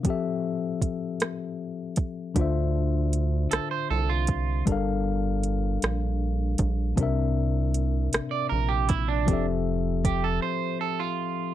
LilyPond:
<<
  \new Staff \with { instrumentName = "Clean electric guitar" } { \time 6/8 \key f \major \tempo 4. = 52 r2. | r4. a'16 c''16 a'16 f'8. | r2. | r4. r16 d''16 bes'16 g'16 e'16 d'16~ |
d'16 r8. g'16 a'16 c''8 a'16 f'8. | }
  \new Staff \with { instrumentName = "Tine electric piano" } { \time 6/8 \key f \major <f c' g' a' e''>2. | <d d' f' c'' e''>2. | <g d' a' bes' f''>2. | <c c' d' bes' e''>2. |
<f c' g' a' e''>2. | }
  \new Staff \with { instrumentName = "Analog synth bass" } { \clef bass \time 6/8 \key f \major r2. | d,4. c,8 c,4 | g,,4. bes,,4 bes,,8 | c,4. bes,,8 bes,,4 |
f,,4. r4. | }
  \new DrumStaff \with { instrumentName = "Drums" } \drummode { \time 6/8 <hh bd>4 <hh bd>8 <hh ss>4 <hh bd>8 | <hh bd>4 hh8 <hh ss>4 <hh bd>8 | <hh bd>4 hh8 <hh ss>4 <hh bd>8 | <hh bd>4 hh8 <hh ss>4 <hh bd>8 |
<hh bd>4 <hh bd>8 r4. | }
>>